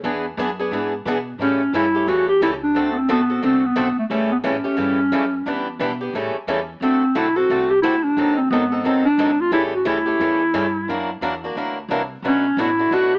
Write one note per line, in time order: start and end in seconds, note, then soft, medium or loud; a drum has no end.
0.03 0.36 E2 medium
0.03 0.24 E3 medium
0.03 0.25 B3 medium
0.03 0.25 D4 medium
0.03 0.25 G#4 medium
0.03 0.25 B4 medium
0.37 0.70 F#2 medium
0.37 0.49 E3 medium
0.37 0.49 B3 medium
0.37 0.49 D4 medium
0.37 0.49 G#4 loud
0.37 0.49 B4 loud
0.59 0.72 B3 soft
0.59 0.72 D4 medium
0.59 0.72 G#4 medium
0.71 1.04 G#2 medium
0.71 0.93 E3 medium
0.71 0.93 B3 medium
0.71 0.93 D4 medium
0.71 0.93 G#4 medium
0.71 0.93 B4 medium
1.05 1.38 B2 medium
1.05 1.17 E3 medium
1.05 1.17 B3 loud
1.05 1.17 D4 loud
1.05 1.18 G#4 loud
1.05 1.17 B4 medium
1.39 1.72 A2 medium
1.39 1.61 C#3 medium
1.39 1.61 E3 medium
1.39 1.60 G3 medium
1.39 1.61 A3 medium
1.39 1.72 C#4 medium
1.39 1.61 C#4 medium
1.39 1.60 E4 medium
1.39 1.61 G4 medium
1.39 1.60 A4 medium
1.73 2.06 G2 medium
1.73 1.85 C#3 medium
1.73 1.85 E3 medium
1.73 1.84 G3 medium
1.73 1.85 A3 medium
1.73 1.85 C#4 medium
1.73 1.85 E4 medium
1.73 2.10 E4 loud
1.73 1.85 G4 medium
1.73 1.85 A4 medium
1.95 2.07 A3 soft
1.95 2.07 C#4 soft
1.95 2.07 G4 medium
2.07 2.40 E2 medium
2.07 2.28 C#3 medium
2.07 2.28 E3 medium
2.07 2.28 G3 medium
2.07 2.28 A3 medium
2.07 2.28 C#4 medium
2.07 2.28 E4 medium
2.07 2.28 F#4 loud
2.07 2.29 G4 medium
2.07 2.28 A4 medium
2.29 2.41 G4 medium
2.41 2.74 C#2 medium
2.41 2.52 C#3 medium
2.41 2.53 E3 medium
2.41 2.52 G3 medium
2.41 2.52 A3 medium
2.41 2.53 C#4 medium
2.41 2.52 E4 medium
2.41 2.53 G4 medium
2.41 2.53 A4 medium
2.63 2.89 D4 medium
2.76 3.08 D2 medium
2.76 2.96 D3 medium
2.76 2.96 A3 medium
2.76 2.96 C4 medium
2.76 2.97 F#4 medium
2.76 2.97 A4 medium
2.92 2.99 B3 medium
2.97 3.10 C4 medium
3.09 3.42 A1 medium
3.09 3.20 D3 medium
3.09 3.20 A3 medium
3.09 3.41 B3 loud
3.09 3.20 C4 medium
3.09 3.20 F#4 medium
3.09 3.20 A4 medium
3.30 3.42 C4 soft
3.30 3.42 F#4 soft
3.30 3.42 A4 medium
3.43 3.75 C2 medium
3.43 3.63 D3 medium
3.43 3.63 A3 medium
3.43 3.63 C4 medium
3.43 3.67 C4 medium
3.43 3.64 F#4 medium
3.43 3.64 A4 medium
3.65 3.98 B3 medium
3.76 3.95 B1 medium
3.76 3.87 D3 medium
3.76 3.87 A3 medium
3.76 3.87 C4 medium
3.76 3.87 F#4 loud
3.76 3.88 A4 medium
3.97 4.05 A3 medium
3.97 muted upright bass stroke soft
4.10 4.43 A1 medium
4.10 4.31 C#3 medium
4.10 4.31 E3 medium
4.10 4.31 G3 medium
4.10 4.31 A3 medium
4.10 4.30 A3 medium
4.10 4.31 C#4 medium
4.10 4.31 E4 medium
4.10 4.32 G4 medium
4.10 4.31 A4 medium
4.32 4.38 B3 medium
4.44 4.63 A2 medium
4.44 4.55 C#3 medium
4.44 4.55 E3 medium
4.44 4.55 G3 medium
4.44 4.55 A3 medium
4.44 4.55 C#4 medium
4.44 5.77 C#4 medium
4.44 4.56 E4 medium
4.44 4.55 G4 medium
4.44 4.56 A4 medium
4.64 4.76 A3 soft
4.64 4.76 C#4 soft
4.64 4.77 G4 medium
4.64 muted upright bass stroke soft
4.77 5.11 G2 medium
4.77 4.98 C#3 medium
4.77 4.98 E3 medium
4.77 4.99 G3 medium
4.77 4.98 A3 medium
4.77 4.98 C#4 medium
4.77 4.99 E4 medium
4.77 4.99 G4 medium
4.77 4.99 A4 medium
5.12 5.45 F#2 medium
5.12 5.23 C#3 medium
5.12 5.23 E3 medium
5.12 5.24 G3 medium
5.12 5.23 A3 medium
5.12 5.24 C#4 medium
5.12 5.24 E4 medium
5.12 5.24 G4 medium
5.12 5.24 A4 medium
5.46 5.79 E2 medium
5.46 5.67 E3 medium
5.46 5.67 G3 medium
5.46 5.67 B3 medium
5.46 5.67 D4 medium
5.46 5.67 E4 medium
5.46 5.67 G4 medium
5.46 5.67 B4 medium
5.79 6.12 B2 medium
5.79 5.91 E3 medium
5.79 5.91 G3 medium
5.79 5.91 B3 medium
5.79 5.91 D4 medium
5.79 5.91 E4 medium
5.79 5.92 G4 medium
5.79 5.91 B4 medium
6.01 6.14 B3 soft
6.01 6.14 D4 soft
6.01 6.13 G4 soft
6.13 6.33 A2 medium
6.13 6.35 C#3 medium
6.13 6.35 E3 medium
6.13 6.35 G3 medium
6.13 6.35 A3 medium
6.13 6.35 C#4 medium
6.13 6.35 E4 medium
6.13 6.35 G4 medium
6.13 6.35 A4 medium
6.34 muted upright bass stroke soft
6.47 6.80 E2 medium
6.47 6.59 C#3 medium
6.47 6.59 E3 medium
6.47 6.59 G3 medium
6.47 6.59 A3 medium
6.47 6.59 C#4 medium
6.47 6.59 E4 medium
6.47 6.59 G4 medium
6.47 6.59 A4 loud
6.81 7.14 D2 medium
6.81 7.02 D3 medium
6.81 7.02 A3 medium
6.81 7.03 C4 medium
6.81 7.18 C4 medium
6.81 7.03 F#4 medium
6.81 7.03 A4 medium
7.15 7.48 B1 medium
7.15 7.26 D3 medium
7.15 7.26 A3 medium
7.15 7.26 C4 medium
7.15 7.38 E4 medium
7.15 7.26 F#4 medium
7.15 7.27 A4 medium
7.36 7.49 C4 soft
7.36 7.49 F#4 soft
7.36 7.71 F#4 medium
7.36 7.49 A4 soft
7.49 7.82 C2 medium
7.49 7.70 D3 medium
7.49 7.70 A3 medium
7.49 7.70 C4 medium
7.49 7.71 F#4 medium
7.49 7.71 A4 medium
7.70 7.82 G4 medium
7.82 8.16 D2 medium
7.82 7.94 D3 medium
7.82 7.94 A3 medium
7.82 7.94 C4 medium
7.82 8.05 E4 medium
7.82 7.94 F#4 loud
7.82 7.94 A4 medium
8.03 8.40 D4 medium
8.17 8.50 D#2 medium
8.17 8.38 D#3 medium
8.17 8.38 F#3 medium
8.17 8.38 C4 medium
8.17 8.38 D#4 medium
8.17 8.38 A4 medium
8.38 8.50 C4 medium
8.51 8.83 G#1 medium
8.51 8.63 D#3 medium
8.51 8.63 F#3 medium
8.51 8.87 B3 medium
8.51 8.63 C4 medium
8.51 8.63 D#4 medium
8.51 8.63 A4 medium
8.72 8.84 C4 soft
8.72 8.85 D#4 soft
8.72 8.84 A4 medium
8.84 9.17 A1 medium
8.84 9.05 D#3 medium
8.84 9.05 F#3 medium
8.84 9.06 C4 medium
8.84 9.05 C4 medium
8.84 9.06 D#4 medium
8.84 9.06 A4 medium
9.05 9.42 D4 loud
9.18 9.51 G#1 medium
9.18 9.29 D#3 medium
9.18 9.30 F#3 medium
9.18 9.30 C4 medium
9.18 9.30 D#4 medium
9.18 9.30 A4 medium
9.40 9.53 F4 medium
9.52 9.85 A1 medium
9.52 9.73 C#3 medium
9.52 9.73 E3 medium
9.52 9.73 G3 medium
9.52 9.73 A3 medium
9.52 9.73 C#4 medium
9.52 9.73 E4 medium
9.52 9.62 E4 medium
9.52 9.73 G4 medium
9.52 9.73 A4 medium
9.74 9.88 F#4 medium
9.85 10.19 D2 medium
9.85 9.97 C#3 medium
9.85 9.97 E3 medium
9.85 9.97 G3 medium
9.85 9.97 A3 medium
9.85 9.97 C#4 medium
9.85 11.22 E4 medium
9.85 9.98 E4 medium
9.85 9.97 G4 medium
9.85 9.98 A4 medium
10.06 10.20 A3 soft
10.06 10.20 C#4 soft
10.06 10.19 G4 medium
10.20 10.53 E2 medium
10.20 10.41 C#3 medium
10.20 10.41 E3 medium
10.20 10.41 G3 medium
10.20 10.41 A3 medium
10.20 10.41 C#4 medium
10.20 10.41 E4 medium
10.20 10.41 G4 medium
10.20 10.41 A4 medium
10.54 10.87 G2 medium
10.54 10.65 C#3 medium
10.54 10.65 E3 medium
10.54 10.65 G3 medium
10.54 10.65 A3 medium
10.54 10.65 C#4 medium
10.54 10.65 E4 medium
10.54 10.66 G4 medium
10.54 10.65 A4 loud
10.88 11.21 F#2 medium
10.88 11.09 E3 medium
10.88 11.09 F#3 medium
10.88 11.09 A#3 medium
10.88 11.09 D4 medium
10.88 11.09 E4 medium
10.88 11.10 F#4 medium
10.88 11.09 A#4 medium
11.21 11.54 E2 medium
11.21 11.33 E3 medium
11.21 11.33 F#3 medium
11.21 11.33 A#3 medium
11.21 11.33 D4 medium
11.21 11.33 E4 medium
11.21 11.33 F#4 medium
11.21 11.33 A#4 medium
11.44 11.56 A#3 soft
11.44 11.56 D4 medium
11.44 11.56 F#4 medium
11.55 11.88 D2 medium
11.55 11.77 E3 medium
11.55 11.76 F#3 medium
11.55 11.77 A#3 medium
11.55 11.77 D4 medium
11.55 11.77 E4 medium
11.55 11.77 F#4 medium
11.55 11.77 A#4 medium
11.88 12.22 C2 medium
11.88 12.01 E3 medium
11.88 12.01 F#3 medium
11.88 12.01 A#3 medium
11.88 12.01 D4 medium
11.88 12.01 E4 medium
11.88 12.01 F#4 medium
11.88 12.01 A#4 medium
12.22 12.56 B1 medium
12.22 12.45 B2 medium
12.22 12.45 F#3 medium
12.22 12.45 A3 medium
12.22 12.45 D4 medium
12.22 12.45 F#4 medium
12.22 12.45 B4 medium
12.27 12.62 C#4 medium
12.57 12.90 A1 medium
12.57 12.69 B2 medium
12.57 12.69 F#3 medium
12.57 12.69 A3 medium
12.57 12.69 D4 medium
12.57 12.95 E4 loud
12.57 12.69 F#4 medium
12.57 12.69 B4 medium
12.79 12.91 A3 soft
12.79 12.92 D4 soft
12.79 12.91 F#4 medium
12.91 13.19 B1 medium
12.91 13.12 B2 medium
12.91 13.12 F#3 medium
12.91 13.12 A3 medium
12.91 13.13 D4 medium
12.91 13.13 F#4 medium
12.91 13.16 F#4 loud
12.91 13.13 B4 medium
13.15 13.19 G4 medium